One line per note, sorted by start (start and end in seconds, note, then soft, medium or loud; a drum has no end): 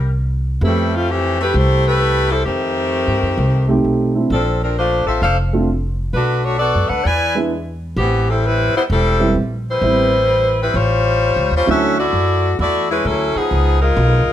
0.00 0.58 C2 medium
0.00 0.17 G3 medium
0.00 0.17 A#4 medium
0.61 1.50 F2 medium
0.61 0.92 G3 medium
0.61 0.90 A3 soft
0.61 0.92 A3 medium
0.61 0.90 B3 soft
0.61 0.92 C4 medium
0.61 0.90 E4 soft
0.61 0.92 E4 medium
0.61 0.90 G4 soft
0.94 1.09 G3 medium
0.94 1.09 A3 medium
0.94 1.09 C4 medium
0.94 1.09 F4 medium
1.10 1.40 E3 medium
1.10 1.39 A3 medium
1.10 1.40 C4 medium
1.10 1.39 G4 medium
1.40 1.54 A3 medium
1.40 1.54 E4 medium
1.40 1.54 G4 medium
1.40 1.54 B4 medium
1.54 2.42 C2 medium
1.54 1.85 A3 medium
1.54 1.85 E4 medium
1.54 1.84 G4 medium
1.54 1.86 C5 loud
1.85 2.31 A3 loud
1.85 2.30 E4 medium
1.85 2.31 G4 medium
1.85 2.31 B4 loud
2.31 2.47 G3 medium
2.31 2.44 C4 medium
2.31 2.47 E4 medium
2.31 2.46 A4 loud
2.45 3.03 F2 medium
2.45 3.80 D#3 medium
2.45 3.80 A3 medium
2.45 3.79 C4 medium
2.45 3.80 G4 medium
3.07 3.22 G2 medium
3.23 3.37 F#2 medium
3.38 3.81 C2 medium
3.68 4.11 A3 medium
3.68 4.12 C4 soft
3.68 4.12 D#4 soft
3.68 4.12 G4 medium
3.84 4.27 B1 medium
4.15 4.29 A3 soft
4.15 4.29 C4 soft
4.15 4.29 D4 soft
4.15 4.30 E4 soft
4.30 5.03 A#1 medium
4.30 4.59 F3 medium
4.30 4.60 C4 medium
4.30 4.59 D4 medium
4.30 4.59 A4 medium
4.63 4.76 F3 medium
4.63 4.77 C4 medium
4.63 4.76 D4 medium
4.63 4.76 A#4 medium
4.77 5.05 A3 medium
4.77 5.06 D4 medium
4.77 5.05 F4 medium
4.77 5.05 C5 medium
5.06 5.21 A1 medium
5.06 5.21 C4 medium
5.06 5.21 F4 medium
5.06 5.21 A4 medium
5.06 5.21 E5 medium
5.22 6.10 F1 medium
5.22 5.37 D4 medium
5.22 5.37 A4 medium
5.22 5.37 C5 medium
5.22 5.37 F5 loud
5.53 5.67 A3 medium
5.53 5.67 C4 medium
5.53 5.67 D4 medium
5.53 5.67 F4 medium
6.13 6.71 B1 medium
6.13 6.43 A3 medium
6.13 6.42 D4 medium
6.13 6.42 F#4 medium
6.13 6.43 B4 medium
6.43 6.60 A3 medium
6.43 6.60 D4 medium
6.43 6.57 F#4 medium
6.43 6.60 C#5 medium
6.59 6.88 B3 medium
6.59 6.88 F#4 medium
6.59 6.88 A4 medium
6.59 6.88 D5 medium
6.75 6.89 F#2 medium
6.88 7.04 D2 medium
6.88 7.05 D4 medium
6.88 7.05 A4 medium
6.88 7.04 B4 medium
6.88 7.05 F#5 medium
7.05 7.94 E2 medium
7.05 7.36 E4 medium
7.05 7.36 B4 medium
7.05 7.36 D5 medium
7.05 7.36 G#5 medium
7.35 7.50 G#3 medium
7.35 7.50 B3 medium
7.35 7.50 D4 soft
7.35 7.51 E4 medium
7.96 8.70 A1 medium
7.96 8.27 E3 medium
7.96 8.26 B3 medium
7.96 8.26 C4 medium
7.96 8.26 G4 medium
8.30 8.45 G3 medium
8.30 8.45 C4 medium
8.30 8.44 E4 medium
8.30 8.45 A4 medium
8.46 8.75 G3 medium
8.46 8.76 C4 medium
8.46 8.75 E4 medium
8.46 8.75 B4 loud
8.74 8.83 G3 medium
8.74 8.83 B3 medium
8.74 8.83 E4 medium
8.74 8.83 C5 medium
8.74 muted upright bass stroke soft
8.90 9.33 E1 medium
8.90 9.34 G3 medium
8.90 9.34 C4 medium
8.90 9.34 E4 medium
8.90 9.34 A4 medium
9.20 9.34 G3 medium
9.20 9.34 B3 soft
9.20 9.35 C4 medium
9.20 9.35 E4 medium
9.35 9.78 A#1 medium
9.70 10.57 G3 medium
9.70 10.57 E4 medium
9.70 10.57 B4 medium
9.70 10.57 C5 loud
9.81 10.70 A1 medium
9.81 10.09 G3 soft
9.81 10.10 B3 soft
9.81 10.10 C4 soft
9.81 10.10 E4 medium
10.61 10.75 G3 medium
10.61 10.76 C4 medium
10.61 10.76 E4 medium
10.61 10.76 B4 medium
10.74 11.32 A1 medium
10.74 11.52 G3 medium
10.74 11.52 F4 medium
10.74 11.52 C5 medium
10.74 11.52 C#5 medium
11.36 11.50 C#2 medium
11.51 11.65 D#2 medium
11.55 11.68 G3 medium
11.55 11.68 C#4 medium
11.55 11.68 F4 medium
11.55 11.68 C5 medium
11.66 12.11 D2 medium
11.66 11.93 F#3 medium
11.66 11.94 A3 medium
11.66 11.94 C#4 medium
11.66 11.94 D4 medium
11.66 11.94 E4 medium
11.70 11.97 C#4 medium
11.70 11.97 F#4 medium
11.70 11.97 A4 medium
11.70 11.97 E5 loud
11.99 12.55 A3 medium
11.99 12.55 E4 medium
11.99 12.55 F#4 medium
11.99 12.55 D5 medium
12.13 12.57 F#2 medium
12.59 13.03 E2 medium
12.59 12.88 A3 medium
12.59 12.87 E4 medium
12.59 12.87 F#4 medium
12.59 12.88 D5 medium
12.89 13.04 G#3 medium
12.89 13.04 C#4 medium
12.89 13.04 E4 medium
12.89 13.04 B4 medium
13.05 13.33 D2 medium
13.05 13.36 F#3 medium
13.05 13.36 C#4 medium
13.05 13.36 E4 medium
13.05 13.36 A4 medium
13.35 13.82 F3 medium
13.35 13.82 B3 medium
13.35 13.80 D#4 medium
13.35 13.82 G#4 medium
13.35 muted upright bass stroke soft
13.51 13.95 C#2 medium
13.81 14.33 G#3 medium
13.81 14.33 D#4 medium
13.81 14.33 F4 medium
13.81 14.33 A#4 medium
13.97 14.25 B1 medium
14.27 muted upright bass stroke soft